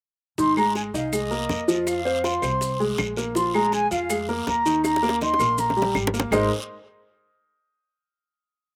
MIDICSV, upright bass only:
0, 0, Header, 1, 2, 480
1, 0, Start_track
1, 0, Key_signature, -4, "major"
1, 0, Tempo, 371287
1, 499, Time_signature, 4, 2, 24, 8
1, 11313, End_track
2, 0, Start_track
2, 0, Title_t, "Upright bass"
2, 0, Program_c, 0, 32
2, 493, Note_on_c, 0, 32, 74
2, 1167, Note_off_c, 0, 32, 0
2, 1215, Note_on_c, 0, 36, 82
2, 1889, Note_off_c, 0, 36, 0
2, 1935, Note_on_c, 0, 41, 81
2, 3064, Note_off_c, 0, 41, 0
2, 3134, Note_on_c, 0, 36, 90
2, 3808, Note_off_c, 0, 36, 0
2, 3849, Note_on_c, 0, 34, 77
2, 4979, Note_off_c, 0, 34, 0
2, 5057, Note_on_c, 0, 41, 92
2, 5727, Note_off_c, 0, 41, 0
2, 5779, Note_on_c, 0, 39, 87
2, 6901, Note_off_c, 0, 39, 0
2, 6973, Note_on_c, 0, 34, 81
2, 7643, Note_off_c, 0, 34, 0
2, 7686, Note_on_c, 0, 32, 78
2, 8114, Note_off_c, 0, 32, 0
2, 8157, Note_on_c, 0, 32, 90
2, 8389, Note_off_c, 0, 32, 0
2, 11313, End_track
0, 0, End_of_file